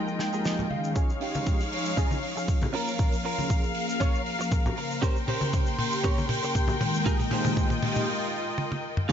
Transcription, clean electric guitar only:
0.19 G5, muted clean electric guitar stroke
0.32 D#4 F4 G4 G#4 A#4
0.45 D#5
0.70 F5
0.95 C#4 D#4 F4 G#4
1.20 C#4 D#4 F4 G4
1.97 C#4 D#4 F4 G#4
2.36 muted clean electric guitar stroke
2.48 muted clean electric guitar stroke
2.73 C#4 F4 A#4
3.24 C#4 F4 A#4
4.00 C#4 F4 C#5
4.39 muted clean electric guitar stroke
4.51 muted clean electric guitar stroke
4.76 muted clean electric guitar stroke
5.02 C#4 G4 A#4 C5
5.27 C#4 G4 A#4 C5
6.04 C#4 G4 A#4 C#5
6.43 muted clean electric guitar stroke
6.55 muted clean electric guitar stroke
6.80 muted clean electric guitar stroke
7.06 D#4 F4 G4 G#4 A#4
7.31 D#4 F4 G4 G#4 C5
9.09 D#4 F4

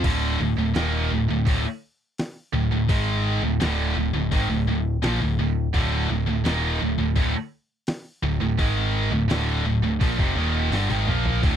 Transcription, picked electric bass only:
0.04 D1
0.40 D1
0.57 D1
0.75 D#1
1.11 D1
1.29 D1
1.47 D1
2.54 D1
2.72 D1
2.89 G#1
3.43 D1
3.61 D1
3.96 D1
4.13 D1
4.32 G#1
4.50 D1
4.68 D1
5.03 A#1
5.21 D1
5.39 D1
5.74 D1
6.10 D1
6.28 D1
6.45 D#1
6.82 D1
6.98 D1
7.16 D1
8.23 D1
8.40 D1
8.59 G#1
9.12 D1
9.29 D1
9.64 D1
9.83 D1
10.01 A#1
10.19 F1
10.37 D#1
10.72 G1
10.90 G#1
11.08 A#1
11.43 D1

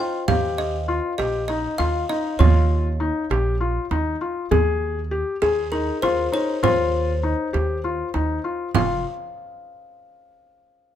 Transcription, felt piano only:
0.00 F4
0.28 G4
0.88 F4
1.18 G4
1.49 D#4
1.79 F4
2.10 D#4
2.39 F4
3.00 D#4
3.31 G4
3.61 F4
3.91 D#4
4.21 F4
4.51 G#4
5.11 G4
5.42 G#4
5.72 D#4
6.03 F4
6.32 D#4
6.63 F4
7.23 D#4
7.53 G4
7.84 F4
8.14 D#4
8.44 F4
8.75 F4

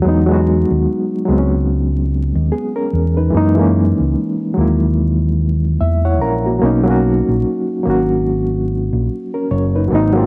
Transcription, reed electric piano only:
0.02 F#3 G#3
0.07 B3 D#4
0.26 F#3 G#3
0.31 B3 F#4
1.25 F#3 G#3
1.30 B3 C4
1.39 C#4
2.52 B3 G#4
2.76 C#4 A#4
3.17 D#4 B4
3.30 E3 G#3
3.35 A#3 D#4
3.55 E3 G#3
3.59 A#3 C#4
4.54 F#3 G#3
4.58 A#3 E4
5.81 E5
6.05 E4 C#5 F#5
6.22 C#4 A#4 A#5
6.46 A#3 F#4
6.59 F#3 A#3
6.63 C#4 D#4
6.84 F#3 A#3
6.88 C#4 F#4
7.83 F#3 A#3
7.88 C#4 F#4
9.34 C#4 A#4
9.51 C#5
9.75 D#4 B4
9.88 F#3 A#3
9.93 C4 D#4
10.13 F#3 A#3
10.17 C4 F4

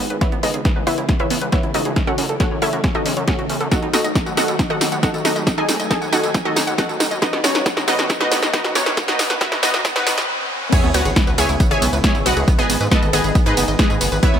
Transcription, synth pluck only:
Already playing: G#4 B4 D#5 G#5
0.21 E4 B4 C#5 E5
0.43 D#4 G#4 B4 D#5
0.87 E4 B4 C#5 E5
1.20 E4 B4 C#5 E5
1.53 E4 B4 C#5 E5
1.75 D#4 F#4 A4 D#5
2.07 F#4 A4 C#5 F#5
2.40 F#4 A4 C#5 F#5
2.62 E4 A4 C#5 E5
2.95 D#4 F#4 A4 D#5
3.28 C#4 F#4 A4 C#5
3.72 F#4 A4 D#5 F#5
3.94 D#4 F#4 A4 D#5
4.37 F#4 A4 D#5 F#5
4.70 F#4 A4 D#5 F#5
5.03 F#4 A4 D#5 F#5
5.25 D#4 F#4 A4 D#5
5.58 G#4 A4 D#5 G#5
5.91 G#4 A4 D#5 G#5
6.12 F#4 A4 D#5 F#5
6.45 D#4 F#4 A4 D#5
6.78 F#4 A4 D#5 F#5
7.22 D#4 F#4 B4 D#5
7.44 C#4 D#4 F#4 C#5
7.88 D#4 F#4 B4 D#5
8.20 D#4 F#4 B4 D#5
8.53 D#4 F#4 B4 D#5
8.75 C#4 D#4 F#4 C#5
9.08 D#4 F#4 B4 D#5
9.41 E4 F#4 B4 E5
9.63 D#4 F#4 B4 D#5
9.96 B3 D#4 F#4 B4
10.72 G#4 C#5 E5 G#5
10.94 F#4 B4 C#5 F#5
11.38 G#4 C#5 E5 G#5
11.71 G#4 C#5 E5 G#5
12.04 G#4 C#5 E5 G#5
12.26 F#4 B4 D#5 F#5
12.59 G#4 B4 D#5 G#5
12.91 A4 B4 D#5 A5
13.13 G#4 B4 D#5 G#5
13.46 D#4 G#4 B4 D#5
13.79 G#4 B4 D#5 G#5
14.23 E4 B4 C#5 E5

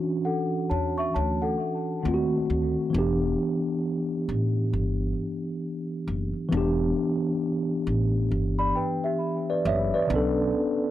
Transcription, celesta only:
0.25 A4 F#5
0.70 C#5 A5
0.98 E5 C#6
1.14 C#5 A5
1.42 A4 F#5
8.59 D5 B5
8.75 B4 G5
9.04 G4 E5

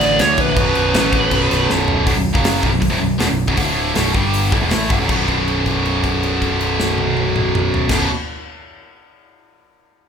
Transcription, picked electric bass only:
0.00 A1
0.20 D2
0.38 A#1
0.57 B0
0.76 B0
0.94 A1
1.32 B0
1.51 B0
1.69 B0
2.07 B0
2.15 B0
2.35 F#1
2.63 B0
2.73 B0
2.82 B0
2.92 D1
3.01 B0
3.21 E1
3.31 B0
3.48 B0
3.57 D1
3.96 B0
4.15 G1
4.53 A1
4.62 E1
4.72 A1
4.91 G1
5.00 B0
5.09 B0
7.90 B0

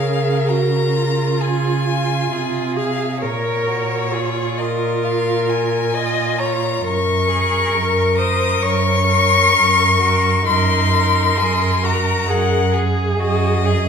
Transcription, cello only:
Already playing: C#3
2.32 C3
3.23 A#2
6.84 F#2
7.72 F#2
8.62 F#2
9.54 F#2
10.46 F#2
11.38 F#2
12.28 F#2
13.20 F#2

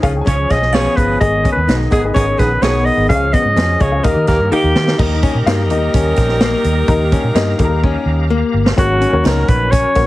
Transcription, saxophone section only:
0.02 F3 C#4 G#4
0.27 F3 C#4 G#4
0.49 F3 C#4 G#4
0.73 F3 C#4 G#4
1.91 D#3 B3 G#4
2.15 D#3 B3 G#4
2.39 D#3 B3 G#4
2.64 D#3 B3 G#4
3.81 F3 C#4 G#4
4.04 D#3 A#3 G4
4.28 D#3 A#3 G4
4.52 D#3 A#3 G4
4.99 G3 D#4 A#4

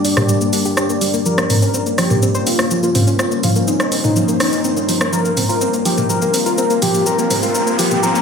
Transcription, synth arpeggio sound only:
0.05 D4
0.17 A#3
0.29 G3
0.41 A#3
0.53 D4
0.65 G4
0.77 D4
0.90 A#3
1.01 G3
1.14 A#3
1.26 F3
1.38 A#3
1.50 C4
1.62 C#4
1.74 C4
1.86 A#3
1.98 F3
2.11 A#3
2.23 C4
2.35 C5
2.47 C4
2.59 A#3
2.71 F3
2.83 A#3
2.95 C4
3.07 C#4
3.19 C4
3.32 A#3
3.44 F3
3.56 A#3
3.68 C4
3.80 C#4
3.92 C4
4.04 A#3
4.16 F3
4.28 A#3
4.40 C4
4.53 C#4
4.64 C4
4.77 A#3
4.89 F3
5.01 A#3
5.13 F3
5.25 A#3
5.37 C4
5.49 F4
5.61 C4
5.73 A#3
5.85 F3
5.98 A#3
6.10 F3
6.22 A#3
6.34 C4
6.46 F4
6.58 C4
6.70 A#3
6.82 F3
6.94 A#3
7.06 F3
7.19 A#3
7.30 C4
7.43 F4
7.55 C4
7.67 A#3
7.79 F3
7.91 A#3
8.03 F3
8.15 A#3

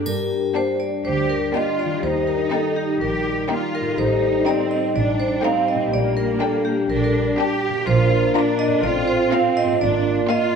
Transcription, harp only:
Already playing: G2 D4 G4
0.02 A#4
1.85 D#3
1.89 D#4
1.94 G4
1.98 A#4
3.81 A2
3.85 D#4
3.90 G4
3.94 A4
5.75 A#2
5.79 D4
5.84 G4
5.88 D5
7.69 A#2
7.74 D4
7.78 A#4
7.83 D5
8.67 A2
8.71 C4
8.75 F4
8.80 F5
9.63 G#2
9.68 A#3
9.72 F4
9.77 F5

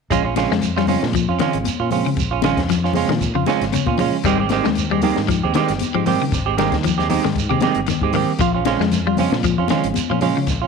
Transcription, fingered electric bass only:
0.11 A#1
0.51 F2
1.03 A#2
1.28 F2
1.54 G#1
1.80 A#2
2.17 A#1
2.57 F2
3.09 A#2
3.35 F2
3.61 G#1
3.87 A#2
4.24 G#1
4.66 D#2
5.17 G#2
5.44 D#2
5.70 G1
5.95 G#2
6.32 G#1
6.72 D#2
7.25 G#2
7.51 D#2
7.76 G1
8.01 G#2
8.39 A#1
8.79 F2
9.32 A#2
9.58 F2
9.84 G#1
10.10 A#2
10.48 A#1

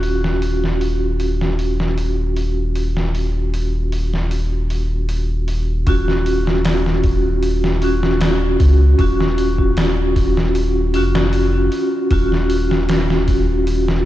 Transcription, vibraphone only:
Already playing: C#4 F4 F#4
5.87 C#4 F4 F#4
7.82 C#4 F4 F#4
8.99 C#4 F4 F#4
10.94 C#4 F4 F#4
12.11 C#4 F4 F#4

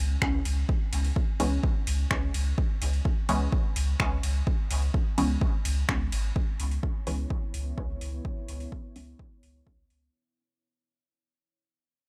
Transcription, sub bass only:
0.00 C#2
0.22 C#2
0.45 C#2
0.93 C#2
1.40 C#2
1.87 C#2
2.11 C#2
2.34 C#2
2.82 C#2
3.29 C#2
3.76 C#2
4.00 C#2
4.23 C#2
4.71 C#2
5.18 C#2
5.65 C#2
5.89 C#2
6.12 G#1
6.60 C#2
7.07 C#2
7.54 C#2
7.78 C#2
8.01 C#2
8.49 C#2
8.96 C#2
9.43 C#2
9.67 C#2
9.90 C#2

